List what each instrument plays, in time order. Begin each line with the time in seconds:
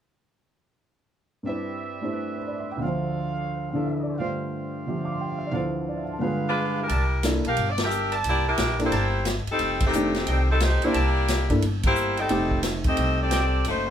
1.43 grand piano G2 G3 C4 D4, trumpet section G3 D5 E5
1.48 grand piano E4 B4
2.01 grand piano A3 D4 E4 G4 C5
2.13 trumpet section B4 D5
2.30 trumpet section G5
2.38 grand piano C5, trumpet section A5
2.48 grand piano D5, trumpet section B5
2.56 grand piano E5, trumpet section C6
2.65 trumpet section D6
2.71 grand piano G5, trumpet section E6
2.77 grand piano D2 D3
2.82 grand piano F3 E5, trumpet section A4 C5 D5 F5
2.88 grand piano C5
3.70 grand piano D3 E3 F5, trumpet section D5 E5
3.75 grand piano D4 A4
3.86 grand piano E5
4.03 grand piano D5
4.18 grand piano G2 D3 A3 F4 C5, trumpet section G4 C5 D5 F5
4.87 grand piano D3 F3 G4 E5
5.05 grand piano D6
5.13 grand piano C6
5.20 grand piano G5
5.29 grand piano F5
5.38 grand piano E5
5.47 grand piano D5
5.51 grand piano D2 D3 E3 F3, trumpet section A4 C5 D5 F5
5.56 grand piano C5
5.88 grand piano D5, trumpet section A5
5.97 grand piano E5
6.04 grand piano F5, trumpet section C6
6.13 grand piano A5
6.19 grand piano G2 D3 G#3 F4, trumpet section G4 G#4 B4 F5
6.23 grand piano B4
6.48 saxophone section G#3 D4 F4 B4
6.80 saxophone section G3 D4 E4 A#4
6.88 upright bass C2, trumpet section A#4 D5 E5 A5, ride
7.23 grand piano A#3 D4 E4 A4, snare, hi-hat pedal, ride
7.45 upright bass B1, saxophone section D4 G4 A#4 F5, ride
7.57 upright bass G1, ride
7.70 saxophone section D5
7.78 snare, ride
7.82 saxophone section D4 G4 A#4 E5
7.90 hi-hat pedal
8.12 trumpet section A#4 D5 E5 A5, ride
8.24 upright bass C2, saxophone section A#3 E4 D5, ride
8.28 saxophone section G4
8.48 saxophone section G3 D4 E4 A#4
8.57 upright bass A#1, snare, hi-hat pedal, ride
8.79 grand piano A#3 D4 E4 A4, ride
8.83 saxophone section A#3 E4 G4 C5
8.91 upright bass G1, trumpet section A#4 D5 E5 A5, ride
9.25 snare, hi-hat pedal, ride
9.46 saxophone section G3 D#4 A4, muted upright bass stroke, ride
9.51 saxophone section C4
9.59 upright bass F1, ride
9.80 kick, ride
9.86 saxophone section D#3 A3 C4 G4
9.93 grand piano A3 D4 D#4 G4, hi-hat pedal
10.14 snare, ride
10.27 upright bass C2, saxophone section D#3 A3 C4 G4, trumpet section A4 D5 D#5 G5, ride
10.50 saxophone section G3 C4 D#4 A4
10.60 saxophone section A3 D#4 G4 C5, snare, hi-hat pedal, ride
10.82 saxophone section A#3 E4 G4 D5, grand piano A#3 D4 E4 C5, ride
10.94 upright bass C2, trumpet section A#4 D5 E5 A5, ride
11.28 snare, hi-hat pedal, ride
11.49 upright bass G2, grand piano A#3 D4 E4 A4, kick, ride
11.62 upright bass G1, ride
11.83 saxophone section A#3 E4 G4 C5, kick, ride
11.95 hi-hat pedal
12.17 saxophone section G3 C4 D#4 A4, trumpet section A4 D5 D#5 G5, ride
12.29 upright bass F1, grand piano A3 C4 D#4 G4, ride
12.51 kick
12.63 snare, hi-hat pedal, ride
12.84 upright bass D#2, saxophone section C4 G4 A4 D#5, kick, ride
12.97 upright bass C2, ride
13.20 saxophone section C4 G4 A4 D5
13.31 trumpet section A4 D5 D#5 G5, snare, hi-hat pedal, ride
13.64 upright bass F#1, saxophone section A3 D#4 F#4 C5, ride